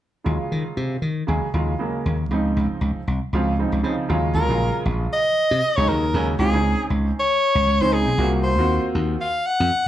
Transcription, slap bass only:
0.26 0.37 D#2 medium
0.52 0.63 D#3 medium
0.77 0.97 C3 medium
1.02 1.23 D#3 medium
1.28 1.39 D#2 medium
1.54 1.74 D#2 medium
2.06 2.26 D#2 medium
2.31 2.51 C#2 medium
2.57 2.68 C#2 medium
2.71 muted slap bass stroke soft
2.81 2.93 C#2 medium
3.07 3.19 C2 medium
3.33 3.64 C#2 medium
3.72 3.82 C#2 medium
3.84 3.95 C#3 medium
4.09 4.30 D#2 medium
4.34 4.49 D#2 medium
4.49 4.69 A#1 medium
4.85 5.06 A#1 medium
5.51 5.60 C3 medium
5.77 5.87 C#2 medium
5.89 6.09 D#2 medium
6.14 6.34 D#2 medium
6.39 6.50 C#2 loud
6.53 6.74 C#2 medium
6.90 7.11 C#2 medium
7.55 7.65 C#2 medium
7.67 7.78 C#2 medium
7.81 8.07 C#2 medium
8.07 8.16 B1 medium
8.18 8.57 C2 medium
8.57 8.78 D#2 medium
8.95 9.15 D#2 medium
9.60 9.69 F2 medium

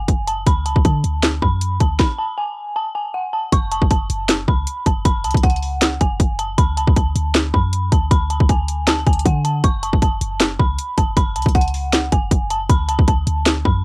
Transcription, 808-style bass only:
0.08 0.45 F#1 loud
0.47 0.67 D2 loud
0.66 0.75 C#2 loud
0.76 0.85 D2 loud
0.85 1.03 D3 loud
1.04 1.41 D2 loud
1.42 1.79 F#2 loud
1.80 1.99 D2 loud
3.52 3.73 F#1 loud
3.72 3.81 F1 loud
3.82 4.09 F#1 loud
4.10 4.46 F#1 loud
4.48 4.66 C#2 loud
4.86 5.05 F#1 loud
5.05 5.26 F#1 loud
5.24 5.34 C#2 loud
5.35 5.98 C#2 loud
6.01 6.19 F#1 loud
6.20 6.57 F#1 loud
6.58 6.79 D2 loud
6.77 6.87 C#2 loud
6.87 7.14 D2 loud
7.15 7.52 D2 loud
7.54 7.90 F#2 loud
7.92 8.10 D2 loud
8.11 8.39 D2 loud
8.40 9.04 D2 loud
9.07 9.25 D2 loud
9.26 9.62 D3 loud
9.64 9.84 F#1 loud
9.83 9.93 F1 loud
9.93 10.20 F#1 loud
10.21 10.58 F#1 loud
10.59 10.78 C#2 loud
10.98 11.16 F#1 loud
11.17 11.37 F#1 loud
11.36 11.45 C#2 loud
11.46 12.10 C#2 loud
12.12 12.31 F#1 loud
12.31 12.68 F#1 loud
12.70 12.90 D2 loud
12.89 12.98 C#2 loud
12.99 13.26 D2 loud
13.27 13.64 D2 loud
13.65 13.84 F#2 loud

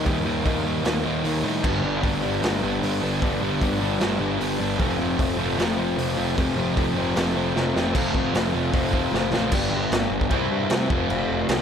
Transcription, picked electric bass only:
0.06 0.25 D#2 loud
0.25 0.44 D#2 medium
0.46 0.83 D#2 medium
0.84 1.03 D#2 medium
1.05 1.24 D#2 medium
1.25 1.43 D#2 medium
1.43 1.65 A2 medium
1.64 1.82 G1 loud
1.83 2.02 G1 medium
2.03 2.41 G1 medium
2.43 2.61 G1 medium
2.63 2.81 G1 medium
2.82 3.01 G1 medium
3.02 3.21 G1 medium
3.22 3.41 G1 medium
3.41 3.60 G1 medium
3.61 3.99 G1 medium
4.01 4.19 G1 loud
4.20 4.39 G1 loud
4.41 4.59 G1 medium
4.61 4.79 G1 medium
4.79 4.98 F1 loud
4.99 5.18 F1 medium
5.19 5.56 F1 medium
5.59 5.77 F1 medium
5.78 5.97 F1 medium
5.98 6.17 F1 medium
6.18 6.37 F1 medium
6.38 6.56 F1 loud
6.58 6.76 F1 medium
6.77 7.14 F1 medium
7.16 7.35 F1 medium
7.37 7.55 F1 loud
7.56 7.74 F1 loud
7.75 7.94 F1 medium
7.95 8.12 F1 loud
8.14 8.31 F1 medium
8.34 8.51 F1 loud
8.53 8.70 F1 medium
8.73 9.07 F1 medium
9.13 9.30 F1 loud
9.32 9.49 A1 medium
9.52 9.66 G1 loud
9.71 9.85 G1 loud
9.91 10.05 G1 loud
10.11 10.25 G1 medium
10.31 10.45 C2 loud
10.51 10.65 G2 loud
10.71 10.85 C3 medium
10.90 11.04 F1 medium
11.10 11.24 F1 loud
11.30 11.43 F1 medium
11.49 11.62 C2 loud

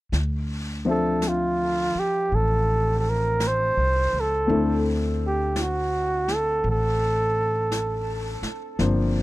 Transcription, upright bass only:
0.12 1.90 D2 medium
1.95 muted upright bass stroke soft
2.32 3.72 A1 medium
3.77 4.10 C2 soft
4.13 4.46 C#2 medium
4.50 6.60 D2 medium
6.64 8.39 A1 medium
8.42 muted upright bass stroke soft
8.79 9.22 G1 medium

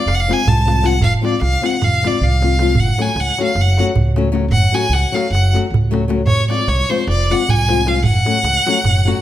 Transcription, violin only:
0.08 0.16 F5 loud
0.14 0.21 F#5 medium
0.20 0.34 F5 medium
0.33 0.49 G#5 loud
0.47 0.87 A5 medium
0.85 1.01 F#5 medium
1.03 1.12 F5 loud
1.25 1.40 D5 medium
1.42 1.67 F5 medium
1.65 1.85 F#5 medium
1.83 2.08 F5 medium
2.07 2.25 D5 medium
2.23 2.81 F5 medium
2.80 3.03 F#5 medium
3.01 3.21 G#5 medium
3.19 3.40 F#5 medium
3.43 3.62 F5 medium
3.61 3.81 F#5 medium
4.52 4.76 F#5 medium
4.74 4.94 G#5 medium
4.93 5.16 F#5 medium
5.15 5.32 F5 medium
5.33 5.53 F#5 medium
6.26 6.48 C#5 medium
6.50 6.70 D5 medium
6.68 6.91 C#5 medium
6.90 7.08 C5 medium
7.09 7.33 D5 medium
7.31 7.51 F#5 medium
7.49 7.90 G#5 loud
7.88 8.04 F5 medium
8.04 9.22 F#5 loud

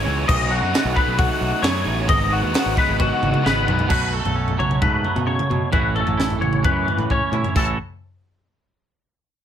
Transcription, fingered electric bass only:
0.06 0.27 C#2 loud
0.29 0.60 B1 loud
0.62 0.72 F#2 medium
0.85 0.95 B1 loud
1.07 1.28 B1 medium
1.41 1.51 B1 loud
1.62 1.84 F#2 medium
1.86 2.07 A1 loud
2.09 2.41 G#1 loud
2.42 2.53 D#2 medium
2.66 2.76 G#1 loud
2.88 3.10 G#1 medium
3.22 3.33 G#1 loud
3.45 3.66 G#1 medium
3.68 3.88 B1 medium
3.90 4.22 B1 medium
4.25 4.57 B1 medium
4.59 4.83 B1 medium
4.82 5.03 G#2 loud
5.15 5.37 B2 medium
5.50 5.61 B2 medium
5.73 6.05 A1 loud
6.07 6.39 A1 medium
6.40 6.66 A1 medium
6.65 6.86 F#2 loud
6.97 7.19 A2 medium
7.32 7.43 A2 medium
7.56 7.77 A1 medium

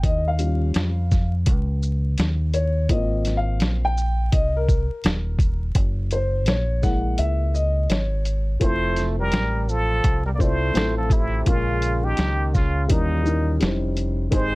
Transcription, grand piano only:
0.05 0.26 D#5 loud
0.28 1.31 F5 medium
0.39 0.89 G3 medium
0.39 0.89 C#4 medium
0.39 0.90 F4 medium
2.54 2.87 C#5 medium
2.89 3.93 A#3 medium
2.89 3.93 C4 soft
2.89 3.93 F4 medium
2.89 3.34 D#5 medium
3.37 3.86 F5 medium
3.85 4.29 G5 loud
4.32 4.55 D#5 loud
4.57 5.60 A#4 loud
6.12 6.49 C5 medium
6.48 6.84 C#5 medium
6.82 7.85 G#3 medium
6.82 7.86 A#3 medium
6.82 7.86 E4 medium
6.82 7.16 F#5 loud
7.19 7.55 E5 medium
7.54 7.91 D#5 medium
7.90 8.57 C#5 medium
8.60 9.86 F3 medium
8.60 9.86 C4 medium
8.60 9.87 E4 medium
8.60 9.87 F4 medium
8.60 9.88 C5 medium
10.38 10.71 A3 medium
10.38 10.71 C4 medium
10.38 10.71 E4 medium
10.38 10.72 F4 medium
10.38 10.72 D5 medium
10.74 11.38 A3 medium
10.74 11.38 C4 medium
10.74 11.39 E4 medium
10.74 11.39 F4 medium
10.78 11.40 A4 medium
11.45 12.71 G#3 medium
11.45 12.72 A#3 medium
11.45 12.72 C#4 medium
11.45 12.73 F4 medium
11.45 12.73 A#4 medium
12.88 13.22 E3 medium
12.88 13.20 G3 medium
12.88 13.21 C#4 medium
12.88 13.21 D#4 medium
12.88 13.22 A#4 medium
13.24 13.57 E3 medium
13.24 13.56 G3 medium
13.24 13.57 C#4 medium
13.24 13.57 D#4 medium
13.24 13.58 A#4 medium
13.60 14.24 G3 medium
13.60 14.24 C#4 medium
13.60 14.24 D#4 medium
13.60 14.25 E4 medium
13.60 14.25 C5 medium
14.30 14.55 D#3 medium
14.30 14.55 C4 medium
14.30 14.55 D#4 medium
14.30 14.55 G4 medium
14.30 14.55 C5 medium

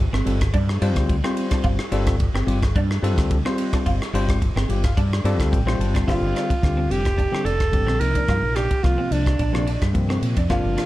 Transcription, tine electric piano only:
0.26 0.38 G3 medium
0.26 0.38 C4 medium
0.26 0.38 F4 medium
0.26 0.38 A4 medium
0.41 0.47 F4 soft
0.41 0.48 A4 soft
0.82 1.15 G3 medium
0.82 1.15 C4 medium
0.82 1.15 F4 medium
0.82 1.15 C5 loud
1.24 1.79 G3 medium
1.24 1.79 C4 medium
1.24 1.79 F4 medium
1.24 1.79 C5 medium
1.92 2.14 G3 loud
1.92 2.14 C4 medium
1.92 2.15 F4 medium
1.92 2.15 A4 loud
2.19 2.27 F4 soft
2.19 2.27 A4 soft
2.47 2.59 G3 medium
2.47 2.59 C4 medium
2.47 2.59 F4 medium
2.47 2.59 G4 medium
2.62 2.68 F4 soft
3.02 3.36 G3 medium
3.02 3.36 C4 medium
3.02 3.36 F4 medium
3.02 3.37 A4 medium
3.45 4.00 G3 medium
3.45 4.00 C4 medium
3.45 4.01 F4 medium
3.45 4.01 C5 medium
4.14 4.36 G3 medium
4.14 4.36 C4 medium
4.14 4.36 F4 medium
4.14 4.37 C5 loud
4.42 4.49 F4 soft
4.42 4.49 C5 soft
4.69 4.81 G3 medium
4.69 4.81 C4 medium
4.69 4.81 F4 medium
4.69 4.81 G4 medium
4.69 4.83 C5 medium
4.84 4.90 F4 soft
4.84 4.91 A4 soft
4.84 4.96 F5 medium
4.98 5.23 D5 medium
5.25 5.58 G3 loud
5.25 5.58 C4 medium
5.25 5.58 F4 medium
5.25 5.58 A4 loud
5.25 5.38 D5 medium
5.39 5.51 F5 medium
5.52 5.78 G5 medium
5.66 6.07 G3 medium
5.66 6.07 C4 medium
5.66 6.08 F4 medium
5.66 6.08 C5 loud
5.80 6.06 A5 medium
6.07 6.52 D3 medium
6.07 6.52 G3 medium
6.07 6.53 C4 medium
6.07 6.53 F4 medium
6.63 6.85 D3 medium
6.63 6.85 G3 medium
6.63 6.86 C4 medium
6.63 6.86 G4 medium
6.89 7.01 D3 medium
6.89 7.02 G3 medium
6.89 7.02 C4 medium
6.89 7.02 G4 medium
7.04 7.11 C4 soft
7.04 7.11 D4 soft
7.31 7.42 D3 medium
7.31 7.43 G3 medium
7.31 7.43 C4 medium
7.31 7.43 G4 medium
7.44 7.52 C4 soft
7.44 7.52 D4 soft
7.59 7.66 C4 soft
7.59 7.66 F4 soft
7.72 8.00 D3 medium
7.72 8.00 G3 medium
7.72 8.01 C4 medium
7.72 8.01 G4 medium
7.99 8.67 C3 medium
7.99 8.67 F3 medium
7.99 8.68 A#3 soft
7.99 8.68 D#4 medium
8.83 9.06 C3 medium
8.83 9.06 F3 medium
8.83 9.06 A#3 medium
8.83 9.06 F4 medium
9.11 9.23 C3 medium
9.11 9.23 F3 medium
9.11 9.23 A#3 soft
9.11 9.24 D4 medium
9.25 9.32 A#3 soft
9.25 9.33 D4 soft
9.53 9.64 C3 medium
9.53 9.64 F3 medium
9.53 9.64 A#3 medium
9.53 9.64 D4 loud
9.65 9.73 A#3 soft
9.65 9.74 C4 soft
9.80 9.87 A#3 soft
9.80 9.88 D4 soft
9.93 10.39 C3 medium
9.93 10.39 F3 medium
9.93 10.39 A#3 medium
9.93 10.39 C4 medium
10.49 10.86 C3 medium
10.49 10.86 F3 medium
10.49 10.86 A#3 medium
10.49 10.86 D4 loud

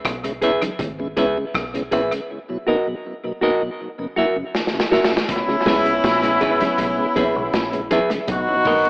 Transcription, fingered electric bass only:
0.05 0.58 B1 loud
0.79 1.13 G#1 medium
1.18 1.35 C#2 loud
1.55 1.89 B1 medium
1.93 2.10 A#1 loud
5.67 6.00 C#2 loud
6.04 6.38 A#1 loud
6.41 6.59 G#1 loud
6.79 6.96 B1 loud
7.17 7.34 A#1 medium
7.36 7.52 B1 medium
7.54 7.88 A#1 medium
8.29 8.62 B1 loud
8.66 8.84 B1 medium

